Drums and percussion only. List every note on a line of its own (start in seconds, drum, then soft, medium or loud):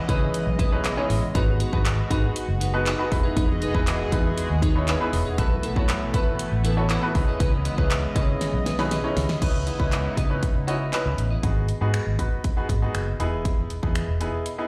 0.09 kick loud
0.09 closed hi-hat medium
0.34 closed hi-hat medium
0.59 kick loud
0.59 closed hi-hat medium
0.84 clap loud
0.84 closed hi-hat medium
1.10 open hi-hat medium
1.35 kick loud
1.35 closed hi-hat medium
1.60 closed hi-hat medium
1.73 kick medium
1.85 clap loud
1.85 closed hi-hat loud
2.11 kick loud
2.11 closed hi-hat medium
2.36 closed hi-hat medium
2.61 closed hi-hat medium
2.86 clap loud
2.86 closed hi-hat medium
3.12 kick loud
3.12 open hi-hat medium
3.37 kick loud
3.37 closed hi-hat medium
3.62 closed hi-hat medium
3.75 kick medium
3.87 clap loud
3.87 closed hi-hat loud
4.12 kick loud
4.12 closed hi-hat medium
4.38 closed hi-hat loud
4.62 kick loud
4.62 closed hi-hat medium
4.88 clap loud
4.88 closed hi-hat medium
5.13 open hi-hat medium
5.38 kick loud
5.38 closed hi-hat medium
5.63 closed hi-hat medium
5.76 kick medium
5.89 clap loud
5.89 closed hi-hat loud
6.14 kick loud
6.14 closed hi-hat medium
6.39 closed hi-hat loud
6.65 closed hi-hat medium
6.90 clap loud
6.90 closed hi-hat medium
7.15 kick medium
7.15 open hi-hat medium
7.40 kick loud
7.40 closed hi-hat medium
7.65 closed hi-hat medium
7.78 kick medium
7.91 clap loud
7.91 closed hi-hat loud
8.16 kick loud
8.16 closed hi-hat medium
8.41 snare medium
8.41 closed hi-hat loud
8.66 snare medium
8.66 closed hi-hat medium
8.79 snare medium
8.91 snare medium
8.91 closed hi-hat medium
9.17 snare loud
9.17 open hi-hat medium
9.29 snare loud
9.42 kick loud
9.42 closed hi-hat medium
9.42 crash loud
9.67 closed hi-hat medium
9.80 kick medium
9.92 clap loud
9.92 closed hi-hat loud
10.17 kick loud
10.17 closed hi-hat medium
10.43 kick loud
10.43 closed hi-hat medium
10.68 closed hi-hat medium
10.93 clap medium
10.93 closed hi-hat medium
11.18 closed hi-hat medium
11.43 kick loud
11.43 closed hi-hat medium
11.69 closed hi-hat medium
11.94 finger snap loud
11.94 closed hi-hat loud
12.19 kick medium
12.19 closed hi-hat medium
12.44 kick loud
12.44 closed hi-hat medium
12.69 kick medium
12.69 closed hi-hat medium
12.95 finger snap loud
12.95 closed hi-hat medium
13.20 closed hi-hat medium
13.45 kick loud
13.45 closed hi-hat medium
13.70 closed hi-hat medium
13.83 kick medium
13.95 finger snap loud
13.95 closed hi-hat loud
14.21 closed hi-hat medium
14.46 closed hi-hat medium